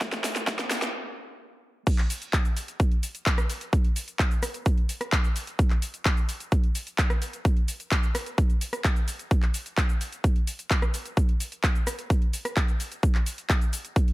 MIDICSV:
0, 0, Header, 1, 2, 480
1, 0, Start_track
1, 0, Tempo, 465116
1, 8, Time_signature, 4, 2, 24, 8
1, 14584, End_track
2, 0, Start_track
2, 0, Title_t, "Drums"
2, 8, Note_on_c, 9, 36, 115
2, 9, Note_on_c, 9, 38, 94
2, 9, Note_on_c, 9, 42, 55
2, 11, Note_on_c, 9, 82, 47
2, 111, Note_off_c, 9, 36, 0
2, 112, Note_off_c, 9, 38, 0
2, 112, Note_off_c, 9, 42, 0
2, 114, Note_off_c, 9, 82, 0
2, 129, Note_on_c, 9, 38, 85
2, 129, Note_on_c, 9, 42, 29
2, 131, Note_on_c, 9, 82, 34
2, 232, Note_off_c, 9, 38, 0
2, 232, Note_off_c, 9, 42, 0
2, 234, Note_off_c, 9, 82, 0
2, 249, Note_on_c, 9, 38, 97
2, 249, Note_on_c, 9, 46, 105
2, 251, Note_on_c, 9, 82, 83
2, 352, Note_off_c, 9, 38, 0
2, 352, Note_off_c, 9, 46, 0
2, 354, Note_off_c, 9, 82, 0
2, 369, Note_on_c, 9, 38, 86
2, 369, Note_on_c, 9, 42, 55
2, 371, Note_on_c, 9, 82, 37
2, 473, Note_off_c, 9, 38, 0
2, 473, Note_off_c, 9, 42, 0
2, 475, Note_off_c, 9, 82, 0
2, 488, Note_on_c, 9, 36, 116
2, 489, Note_on_c, 9, 38, 100
2, 489, Note_on_c, 9, 42, 58
2, 491, Note_on_c, 9, 82, 46
2, 591, Note_off_c, 9, 36, 0
2, 592, Note_off_c, 9, 38, 0
2, 592, Note_off_c, 9, 42, 0
2, 594, Note_off_c, 9, 82, 0
2, 609, Note_on_c, 9, 38, 85
2, 609, Note_on_c, 9, 42, 27
2, 611, Note_on_c, 9, 82, 32
2, 712, Note_off_c, 9, 38, 0
2, 712, Note_off_c, 9, 42, 0
2, 714, Note_off_c, 9, 82, 0
2, 728, Note_on_c, 9, 38, 102
2, 728, Note_on_c, 9, 46, 92
2, 730, Note_on_c, 9, 82, 84
2, 832, Note_off_c, 9, 38, 0
2, 832, Note_off_c, 9, 46, 0
2, 834, Note_off_c, 9, 82, 0
2, 848, Note_on_c, 9, 38, 91
2, 848, Note_on_c, 9, 42, 56
2, 850, Note_on_c, 9, 82, 36
2, 952, Note_off_c, 9, 38, 0
2, 952, Note_off_c, 9, 42, 0
2, 953, Note_off_c, 9, 82, 0
2, 1928, Note_on_c, 9, 36, 121
2, 1929, Note_on_c, 9, 42, 54
2, 1929, Note_on_c, 9, 49, 108
2, 1931, Note_on_c, 9, 82, 45
2, 2031, Note_off_c, 9, 36, 0
2, 2032, Note_off_c, 9, 42, 0
2, 2032, Note_off_c, 9, 49, 0
2, 2034, Note_off_c, 9, 82, 0
2, 2047, Note_on_c, 9, 39, 40
2, 2048, Note_on_c, 9, 42, 29
2, 2150, Note_off_c, 9, 39, 0
2, 2152, Note_off_c, 9, 42, 0
2, 2169, Note_on_c, 9, 46, 110
2, 2170, Note_on_c, 9, 82, 80
2, 2272, Note_off_c, 9, 46, 0
2, 2274, Note_off_c, 9, 82, 0
2, 2288, Note_on_c, 9, 42, 56
2, 2290, Note_on_c, 9, 82, 34
2, 2391, Note_off_c, 9, 42, 0
2, 2393, Note_off_c, 9, 82, 0
2, 2407, Note_on_c, 9, 39, 125
2, 2408, Note_on_c, 9, 36, 116
2, 2408, Note_on_c, 9, 42, 55
2, 2410, Note_on_c, 9, 82, 45
2, 2510, Note_off_c, 9, 39, 0
2, 2511, Note_off_c, 9, 36, 0
2, 2511, Note_off_c, 9, 42, 0
2, 2513, Note_off_c, 9, 82, 0
2, 2528, Note_on_c, 9, 42, 27
2, 2530, Note_on_c, 9, 82, 32
2, 2632, Note_off_c, 9, 42, 0
2, 2633, Note_off_c, 9, 82, 0
2, 2648, Note_on_c, 9, 46, 95
2, 2650, Note_on_c, 9, 82, 82
2, 2751, Note_off_c, 9, 46, 0
2, 2753, Note_off_c, 9, 82, 0
2, 2768, Note_on_c, 9, 42, 55
2, 2770, Note_on_c, 9, 82, 35
2, 2871, Note_off_c, 9, 42, 0
2, 2873, Note_off_c, 9, 82, 0
2, 2888, Note_on_c, 9, 36, 118
2, 2888, Note_on_c, 9, 42, 56
2, 2890, Note_on_c, 9, 82, 45
2, 2991, Note_off_c, 9, 36, 0
2, 2992, Note_off_c, 9, 42, 0
2, 2993, Note_off_c, 9, 82, 0
2, 3009, Note_on_c, 9, 42, 28
2, 3112, Note_off_c, 9, 42, 0
2, 3128, Note_on_c, 9, 46, 108
2, 3129, Note_on_c, 9, 82, 79
2, 3231, Note_off_c, 9, 46, 0
2, 3233, Note_off_c, 9, 82, 0
2, 3248, Note_on_c, 9, 42, 57
2, 3249, Note_on_c, 9, 82, 34
2, 3351, Note_off_c, 9, 42, 0
2, 3353, Note_off_c, 9, 82, 0
2, 3366, Note_on_c, 9, 39, 127
2, 3367, Note_on_c, 9, 42, 56
2, 3368, Note_on_c, 9, 36, 118
2, 3369, Note_on_c, 9, 82, 46
2, 3469, Note_off_c, 9, 39, 0
2, 3471, Note_off_c, 9, 36, 0
2, 3471, Note_off_c, 9, 42, 0
2, 3472, Note_off_c, 9, 82, 0
2, 3487, Note_on_c, 9, 37, 79
2, 3487, Note_on_c, 9, 42, 28
2, 3489, Note_on_c, 9, 82, 31
2, 3591, Note_off_c, 9, 37, 0
2, 3591, Note_off_c, 9, 42, 0
2, 3592, Note_off_c, 9, 82, 0
2, 3607, Note_on_c, 9, 46, 92
2, 3609, Note_on_c, 9, 82, 79
2, 3711, Note_off_c, 9, 46, 0
2, 3712, Note_off_c, 9, 82, 0
2, 3727, Note_on_c, 9, 42, 56
2, 3729, Note_on_c, 9, 82, 33
2, 3830, Note_off_c, 9, 42, 0
2, 3832, Note_off_c, 9, 82, 0
2, 3848, Note_on_c, 9, 36, 126
2, 3848, Note_on_c, 9, 42, 54
2, 3849, Note_on_c, 9, 82, 43
2, 3951, Note_off_c, 9, 36, 0
2, 3951, Note_off_c, 9, 42, 0
2, 3953, Note_off_c, 9, 82, 0
2, 3968, Note_on_c, 9, 42, 28
2, 4071, Note_off_c, 9, 42, 0
2, 4088, Note_on_c, 9, 46, 113
2, 4090, Note_on_c, 9, 82, 77
2, 4191, Note_off_c, 9, 46, 0
2, 4193, Note_off_c, 9, 82, 0
2, 4208, Note_on_c, 9, 42, 53
2, 4210, Note_on_c, 9, 82, 33
2, 4311, Note_off_c, 9, 42, 0
2, 4313, Note_off_c, 9, 82, 0
2, 4327, Note_on_c, 9, 39, 127
2, 4328, Note_on_c, 9, 36, 124
2, 4329, Note_on_c, 9, 42, 53
2, 4331, Note_on_c, 9, 82, 44
2, 4430, Note_off_c, 9, 39, 0
2, 4432, Note_off_c, 9, 36, 0
2, 4432, Note_off_c, 9, 42, 0
2, 4434, Note_off_c, 9, 82, 0
2, 4448, Note_on_c, 9, 42, 26
2, 4450, Note_on_c, 9, 82, 31
2, 4551, Note_off_c, 9, 42, 0
2, 4553, Note_off_c, 9, 82, 0
2, 4568, Note_on_c, 9, 37, 89
2, 4568, Note_on_c, 9, 46, 99
2, 4569, Note_on_c, 9, 82, 78
2, 4671, Note_off_c, 9, 37, 0
2, 4671, Note_off_c, 9, 46, 0
2, 4673, Note_off_c, 9, 82, 0
2, 4688, Note_on_c, 9, 42, 53
2, 4690, Note_on_c, 9, 82, 32
2, 4791, Note_off_c, 9, 42, 0
2, 4793, Note_off_c, 9, 82, 0
2, 4808, Note_on_c, 9, 42, 54
2, 4809, Note_on_c, 9, 36, 121
2, 4810, Note_on_c, 9, 82, 44
2, 4911, Note_off_c, 9, 42, 0
2, 4912, Note_off_c, 9, 36, 0
2, 4913, Note_off_c, 9, 82, 0
2, 4928, Note_on_c, 9, 42, 27
2, 5032, Note_off_c, 9, 42, 0
2, 5048, Note_on_c, 9, 46, 109
2, 5050, Note_on_c, 9, 82, 76
2, 5151, Note_off_c, 9, 46, 0
2, 5153, Note_off_c, 9, 82, 0
2, 5168, Note_on_c, 9, 37, 80
2, 5168, Note_on_c, 9, 42, 54
2, 5170, Note_on_c, 9, 82, 34
2, 5271, Note_off_c, 9, 37, 0
2, 5271, Note_off_c, 9, 42, 0
2, 5273, Note_off_c, 9, 82, 0
2, 5287, Note_on_c, 9, 39, 127
2, 5288, Note_on_c, 9, 42, 55
2, 5289, Note_on_c, 9, 36, 127
2, 5290, Note_on_c, 9, 82, 43
2, 5390, Note_off_c, 9, 39, 0
2, 5392, Note_off_c, 9, 36, 0
2, 5392, Note_off_c, 9, 42, 0
2, 5394, Note_off_c, 9, 82, 0
2, 5409, Note_on_c, 9, 42, 26
2, 5411, Note_on_c, 9, 82, 30
2, 5512, Note_off_c, 9, 42, 0
2, 5514, Note_off_c, 9, 82, 0
2, 5529, Note_on_c, 9, 46, 99
2, 5531, Note_on_c, 9, 82, 76
2, 5632, Note_off_c, 9, 46, 0
2, 5634, Note_off_c, 9, 82, 0
2, 5649, Note_on_c, 9, 42, 55
2, 5650, Note_on_c, 9, 82, 34
2, 5752, Note_off_c, 9, 42, 0
2, 5754, Note_off_c, 9, 82, 0
2, 5768, Note_on_c, 9, 42, 52
2, 5769, Note_on_c, 9, 36, 127
2, 5770, Note_on_c, 9, 82, 43
2, 5872, Note_off_c, 9, 36, 0
2, 5872, Note_off_c, 9, 42, 0
2, 5874, Note_off_c, 9, 82, 0
2, 5887, Note_on_c, 9, 39, 39
2, 5888, Note_on_c, 9, 42, 27
2, 5990, Note_off_c, 9, 39, 0
2, 5991, Note_off_c, 9, 42, 0
2, 6009, Note_on_c, 9, 46, 114
2, 6010, Note_on_c, 9, 82, 75
2, 6112, Note_off_c, 9, 46, 0
2, 6114, Note_off_c, 9, 82, 0
2, 6128, Note_on_c, 9, 42, 52
2, 6130, Note_on_c, 9, 82, 33
2, 6231, Note_off_c, 9, 42, 0
2, 6233, Note_off_c, 9, 82, 0
2, 6247, Note_on_c, 9, 39, 121
2, 6249, Note_on_c, 9, 36, 126
2, 6249, Note_on_c, 9, 42, 53
2, 6251, Note_on_c, 9, 82, 43
2, 6350, Note_off_c, 9, 39, 0
2, 6352, Note_off_c, 9, 36, 0
2, 6352, Note_off_c, 9, 42, 0
2, 6354, Note_off_c, 9, 82, 0
2, 6368, Note_on_c, 9, 42, 26
2, 6370, Note_on_c, 9, 82, 30
2, 6471, Note_off_c, 9, 42, 0
2, 6473, Note_off_c, 9, 82, 0
2, 6488, Note_on_c, 9, 46, 104
2, 6490, Note_on_c, 9, 82, 78
2, 6592, Note_off_c, 9, 46, 0
2, 6594, Note_off_c, 9, 82, 0
2, 6609, Note_on_c, 9, 42, 52
2, 6610, Note_on_c, 9, 82, 31
2, 6712, Note_off_c, 9, 42, 0
2, 6714, Note_off_c, 9, 82, 0
2, 6728, Note_on_c, 9, 42, 53
2, 6729, Note_on_c, 9, 36, 126
2, 6730, Note_on_c, 9, 82, 44
2, 6831, Note_off_c, 9, 42, 0
2, 6832, Note_off_c, 9, 36, 0
2, 6833, Note_off_c, 9, 82, 0
2, 6848, Note_on_c, 9, 42, 26
2, 6951, Note_off_c, 9, 42, 0
2, 6968, Note_on_c, 9, 46, 112
2, 6969, Note_on_c, 9, 82, 73
2, 7071, Note_off_c, 9, 46, 0
2, 7073, Note_off_c, 9, 82, 0
2, 7088, Note_on_c, 9, 42, 52
2, 7090, Note_on_c, 9, 82, 33
2, 7191, Note_off_c, 9, 42, 0
2, 7193, Note_off_c, 9, 82, 0
2, 7206, Note_on_c, 9, 39, 123
2, 7208, Note_on_c, 9, 42, 52
2, 7209, Note_on_c, 9, 36, 127
2, 7210, Note_on_c, 9, 82, 43
2, 7310, Note_off_c, 9, 39, 0
2, 7311, Note_off_c, 9, 42, 0
2, 7312, Note_off_c, 9, 36, 0
2, 7313, Note_off_c, 9, 82, 0
2, 7328, Note_on_c, 9, 37, 83
2, 7328, Note_on_c, 9, 42, 26
2, 7330, Note_on_c, 9, 82, 29
2, 7431, Note_off_c, 9, 37, 0
2, 7431, Note_off_c, 9, 42, 0
2, 7433, Note_off_c, 9, 82, 0
2, 7448, Note_on_c, 9, 46, 95
2, 7450, Note_on_c, 9, 82, 74
2, 7551, Note_off_c, 9, 46, 0
2, 7553, Note_off_c, 9, 82, 0
2, 7568, Note_on_c, 9, 42, 54
2, 7570, Note_on_c, 9, 82, 33
2, 7672, Note_off_c, 9, 42, 0
2, 7674, Note_off_c, 9, 82, 0
2, 7689, Note_on_c, 9, 36, 127
2, 7689, Note_on_c, 9, 42, 51
2, 7691, Note_on_c, 9, 82, 44
2, 7792, Note_off_c, 9, 36, 0
2, 7792, Note_off_c, 9, 42, 0
2, 7794, Note_off_c, 9, 82, 0
2, 7809, Note_on_c, 9, 42, 26
2, 7912, Note_off_c, 9, 42, 0
2, 7928, Note_on_c, 9, 46, 110
2, 7930, Note_on_c, 9, 82, 75
2, 8032, Note_off_c, 9, 46, 0
2, 8033, Note_off_c, 9, 82, 0
2, 8049, Note_on_c, 9, 42, 52
2, 8051, Note_on_c, 9, 82, 33
2, 8152, Note_off_c, 9, 42, 0
2, 8154, Note_off_c, 9, 82, 0
2, 8167, Note_on_c, 9, 39, 120
2, 8169, Note_on_c, 9, 36, 125
2, 8169, Note_on_c, 9, 42, 51
2, 8171, Note_on_c, 9, 82, 45
2, 8271, Note_off_c, 9, 39, 0
2, 8272, Note_off_c, 9, 36, 0
2, 8272, Note_off_c, 9, 42, 0
2, 8274, Note_off_c, 9, 82, 0
2, 8289, Note_on_c, 9, 42, 25
2, 8291, Note_on_c, 9, 82, 31
2, 8392, Note_off_c, 9, 42, 0
2, 8394, Note_off_c, 9, 82, 0
2, 8409, Note_on_c, 9, 37, 94
2, 8409, Note_on_c, 9, 46, 102
2, 8411, Note_on_c, 9, 82, 78
2, 8512, Note_off_c, 9, 37, 0
2, 8512, Note_off_c, 9, 46, 0
2, 8514, Note_off_c, 9, 82, 0
2, 8528, Note_on_c, 9, 42, 51
2, 8530, Note_on_c, 9, 82, 33
2, 8631, Note_off_c, 9, 42, 0
2, 8633, Note_off_c, 9, 82, 0
2, 8649, Note_on_c, 9, 36, 124
2, 8649, Note_on_c, 9, 42, 51
2, 8651, Note_on_c, 9, 82, 45
2, 8752, Note_off_c, 9, 36, 0
2, 8752, Note_off_c, 9, 42, 0
2, 8754, Note_off_c, 9, 82, 0
2, 8769, Note_on_c, 9, 42, 25
2, 8771, Note_on_c, 9, 82, 31
2, 8872, Note_off_c, 9, 42, 0
2, 8874, Note_off_c, 9, 82, 0
2, 8888, Note_on_c, 9, 46, 112
2, 8890, Note_on_c, 9, 82, 77
2, 8992, Note_off_c, 9, 46, 0
2, 8993, Note_off_c, 9, 82, 0
2, 9008, Note_on_c, 9, 37, 84
2, 9008, Note_on_c, 9, 42, 51
2, 9010, Note_on_c, 9, 82, 34
2, 9111, Note_off_c, 9, 37, 0
2, 9111, Note_off_c, 9, 42, 0
2, 9113, Note_off_c, 9, 82, 0
2, 9127, Note_on_c, 9, 39, 123
2, 9128, Note_on_c, 9, 36, 125
2, 9128, Note_on_c, 9, 42, 51
2, 9130, Note_on_c, 9, 82, 44
2, 9230, Note_off_c, 9, 39, 0
2, 9231, Note_off_c, 9, 42, 0
2, 9232, Note_off_c, 9, 36, 0
2, 9233, Note_off_c, 9, 82, 0
2, 9248, Note_on_c, 9, 42, 25
2, 9250, Note_on_c, 9, 82, 30
2, 9351, Note_off_c, 9, 42, 0
2, 9353, Note_off_c, 9, 82, 0
2, 9368, Note_on_c, 9, 46, 97
2, 9370, Note_on_c, 9, 82, 76
2, 9471, Note_off_c, 9, 46, 0
2, 9473, Note_off_c, 9, 82, 0
2, 9488, Note_on_c, 9, 42, 52
2, 9490, Note_on_c, 9, 82, 34
2, 9591, Note_off_c, 9, 42, 0
2, 9593, Note_off_c, 9, 82, 0
2, 9608, Note_on_c, 9, 36, 120
2, 9608, Note_on_c, 9, 42, 52
2, 9610, Note_on_c, 9, 82, 46
2, 9711, Note_off_c, 9, 42, 0
2, 9712, Note_off_c, 9, 36, 0
2, 9713, Note_off_c, 9, 82, 0
2, 9727, Note_on_c, 9, 39, 38
2, 9728, Note_on_c, 9, 42, 26
2, 9830, Note_off_c, 9, 39, 0
2, 9831, Note_off_c, 9, 42, 0
2, 9848, Note_on_c, 9, 46, 109
2, 9850, Note_on_c, 9, 82, 78
2, 9951, Note_off_c, 9, 46, 0
2, 9953, Note_off_c, 9, 82, 0
2, 9969, Note_on_c, 9, 42, 51
2, 9970, Note_on_c, 9, 82, 36
2, 10072, Note_off_c, 9, 42, 0
2, 10074, Note_off_c, 9, 82, 0
2, 10087, Note_on_c, 9, 39, 115
2, 10088, Note_on_c, 9, 36, 120
2, 10089, Note_on_c, 9, 42, 52
2, 10091, Note_on_c, 9, 82, 46
2, 10190, Note_off_c, 9, 39, 0
2, 10192, Note_off_c, 9, 36, 0
2, 10192, Note_off_c, 9, 42, 0
2, 10194, Note_off_c, 9, 82, 0
2, 10209, Note_on_c, 9, 42, 25
2, 10211, Note_on_c, 9, 82, 32
2, 10312, Note_off_c, 9, 42, 0
2, 10314, Note_off_c, 9, 82, 0
2, 10329, Note_on_c, 9, 46, 96
2, 10331, Note_on_c, 9, 82, 83
2, 10432, Note_off_c, 9, 46, 0
2, 10434, Note_off_c, 9, 82, 0
2, 10449, Note_on_c, 9, 42, 51
2, 10451, Note_on_c, 9, 82, 34
2, 10552, Note_off_c, 9, 42, 0
2, 10554, Note_off_c, 9, 82, 0
2, 10568, Note_on_c, 9, 36, 120
2, 10569, Note_on_c, 9, 42, 50
2, 10571, Note_on_c, 9, 82, 45
2, 10672, Note_off_c, 9, 36, 0
2, 10672, Note_off_c, 9, 42, 0
2, 10674, Note_off_c, 9, 82, 0
2, 10689, Note_on_c, 9, 42, 26
2, 10792, Note_off_c, 9, 42, 0
2, 10809, Note_on_c, 9, 46, 107
2, 10811, Note_on_c, 9, 82, 81
2, 10912, Note_off_c, 9, 46, 0
2, 10914, Note_off_c, 9, 82, 0
2, 10929, Note_on_c, 9, 42, 53
2, 10931, Note_on_c, 9, 82, 35
2, 11032, Note_off_c, 9, 42, 0
2, 11034, Note_off_c, 9, 82, 0
2, 11048, Note_on_c, 9, 36, 124
2, 11048, Note_on_c, 9, 39, 117
2, 11049, Note_on_c, 9, 42, 52
2, 11051, Note_on_c, 9, 82, 45
2, 11151, Note_off_c, 9, 39, 0
2, 11152, Note_off_c, 9, 36, 0
2, 11153, Note_off_c, 9, 42, 0
2, 11154, Note_off_c, 9, 82, 0
2, 11169, Note_on_c, 9, 37, 86
2, 11169, Note_on_c, 9, 42, 26
2, 11171, Note_on_c, 9, 82, 31
2, 11272, Note_off_c, 9, 37, 0
2, 11272, Note_off_c, 9, 42, 0
2, 11274, Note_off_c, 9, 82, 0
2, 11289, Note_on_c, 9, 46, 94
2, 11291, Note_on_c, 9, 82, 79
2, 11392, Note_off_c, 9, 46, 0
2, 11394, Note_off_c, 9, 82, 0
2, 11409, Note_on_c, 9, 42, 52
2, 11411, Note_on_c, 9, 82, 35
2, 11512, Note_off_c, 9, 42, 0
2, 11514, Note_off_c, 9, 82, 0
2, 11528, Note_on_c, 9, 36, 117
2, 11529, Note_on_c, 9, 42, 53
2, 11531, Note_on_c, 9, 82, 48
2, 11631, Note_off_c, 9, 36, 0
2, 11632, Note_off_c, 9, 42, 0
2, 11634, Note_off_c, 9, 82, 0
2, 11649, Note_on_c, 9, 42, 27
2, 11752, Note_off_c, 9, 42, 0
2, 11769, Note_on_c, 9, 46, 103
2, 11770, Note_on_c, 9, 82, 82
2, 11872, Note_off_c, 9, 46, 0
2, 11874, Note_off_c, 9, 82, 0
2, 11889, Note_on_c, 9, 42, 54
2, 11891, Note_on_c, 9, 82, 36
2, 11992, Note_off_c, 9, 42, 0
2, 11994, Note_off_c, 9, 82, 0
2, 12008, Note_on_c, 9, 36, 115
2, 12008, Note_on_c, 9, 39, 117
2, 12009, Note_on_c, 9, 42, 53
2, 12011, Note_on_c, 9, 82, 48
2, 12111, Note_off_c, 9, 39, 0
2, 12112, Note_off_c, 9, 36, 0
2, 12112, Note_off_c, 9, 42, 0
2, 12114, Note_off_c, 9, 82, 0
2, 12129, Note_on_c, 9, 42, 27
2, 12131, Note_on_c, 9, 82, 33
2, 12232, Note_off_c, 9, 42, 0
2, 12234, Note_off_c, 9, 82, 0
2, 12249, Note_on_c, 9, 37, 89
2, 12249, Note_on_c, 9, 46, 96
2, 12251, Note_on_c, 9, 82, 83
2, 12352, Note_off_c, 9, 37, 0
2, 12352, Note_off_c, 9, 46, 0
2, 12354, Note_off_c, 9, 82, 0
2, 12369, Note_on_c, 9, 42, 54
2, 12371, Note_on_c, 9, 82, 35
2, 12473, Note_off_c, 9, 42, 0
2, 12474, Note_off_c, 9, 82, 0
2, 12488, Note_on_c, 9, 36, 113
2, 12490, Note_on_c, 9, 42, 53
2, 12492, Note_on_c, 9, 82, 47
2, 12592, Note_off_c, 9, 36, 0
2, 12593, Note_off_c, 9, 42, 0
2, 12595, Note_off_c, 9, 82, 0
2, 12610, Note_on_c, 9, 42, 26
2, 12713, Note_off_c, 9, 42, 0
2, 12729, Note_on_c, 9, 46, 102
2, 12731, Note_on_c, 9, 82, 81
2, 12832, Note_off_c, 9, 46, 0
2, 12834, Note_off_c, 9, 82, 0
2, 12850, Note_on_c, 9, 37, 83
2, 12850, Note_on_c, 9, 42, 53
2, 12852, Note_on_c, 9, 82, 35
2, 12953, Note_off_c, 9, 37, 0
2, 12953, Note_off_c, 9, 42, 0
2, 12955, Note_off_c, 9, 82, 0
2, 12968, Note_on_c, 9, 36, 118
2, 12968, Note_on_c, 9, 39, 116
2, 12969, Note_on_c, 9, 42, 54
2, 12971, Note_on_c, 9, 82, 48
2, 13071, Note_off_c, 9, 36, 0
2, 13071, Note_off_c, 9, 39, 0
2, 13073, Note_off_c, 9, 42, 0
2, 13074, Note_off_c, 9, 82, 0
2, 13089, Note_on_c, 9, 42, 26
2, 13091, Note_on_c, 9, 82, 32
2, 13193, Note_off_c, 9, 42, 0
2, 13195, Note_off_c, 9, 82, 0
2, 13210, Note_on_c, 9, 46, 90
2, 13211, Note_on_c, 9, 82, 83
2, 13313, Note_off_c, 9, 46, 0
2, 13315, Note_off_c, 9, 82, 0
2, 13329, Note_on_c, 9, 42, 53
2, 13331, Note_on_c, 9, 82, 37
2, 13433, Note_off_c, 9, 42, 0
2, 13434, Note_off_c, 9, 82, 0
2, 13448, Note_on_c, 9, 36, 117
2, 13449, Note_on_c, 9, 42, 53
2, 13451, Note_on_c, 9, 82, 49
2, 13552, Note_off_c, 9, 36, 0
2, 13553, Note_off_c, 9, 42, 0
2, 13554, Note_off_c, 9, 82, 0
2, 13568, Note_on_c, 9, 39, 39
2, 13570, Note_on_c, 9, 42, 28
2, 13671, Note_off_c, 9, 39, 0
2, 13673, Note_off_c, 9, 42, 0
2, 13689, Note_on_c, 9, 46, 103
2, 13691, Note_on_c, 9, 82, 83
2, 13792, Note_off_c, 9, 46, 0
2, 13794, Note_off_c, 9, 82, 0
2, 13809, Note_on_c, 9, 42, 57
2, 13811, Note_on_c, 9, 82, 35
2, 13912, Note_off_c, 9, 42, 0
2, 13914, Note_off_c, 9, 82, 0
2, 13927, Note_on_c, 9, 39, 120
2, 13928, Note_on_c, 9, 36, 111
2, 13929, Note_on_c, 9, 42, 54
2, 13931, Note_on_c, 9, 82, 47
2, 14031, Note_off_c, 9, 36, 0
2, 14031, Note_off_c, 9, 39, 0
2, 14032, Note_off_c, 9, 42, 0
2, 14034, Note_off_c, 9, 82, 0
2, 14049, Note_on_c, 9, 42, 27
2, 14051, Note_on_c, 9, 82, 33
2, 14153, Note_off_c, 9, 42, 0
2, 14155, Note_off_c, 9, 82, 0
2, 14169, Note_on_c, 9, 46, 92
2, 14171, Note_on_c, 9, 82, 86
2, 14272, Note_off_c, 9, 46, 0
2, 14274, Note_off_c, 9, 82, 0
2, 14290, Note_on_c, 9, 42, 55
2, 14291, Note_on_c, 9, 82, 36
2, 14393, Note_off_c, 9, 42, 0
2, 14395, Note_off_c, 9, 82, 0
2, 14408, Note_on_c, 9, 36, 116
2, 14409, Note_on_c, 9, 42, 55
2, 14411, Note_on_c, 9, 82, 47
2, 14511, Note_off_c, 9, 36, 0
2, 14512, Note_off_c, 9, 42, 0
2, 14514, Note_off_c, 9, 82, 0
2, 14529, Note_on_c, 9, 42, 27
2, 14584, Note_off_c, 9, 42, 0
2, 14584, End_track
0, 0, End_of_file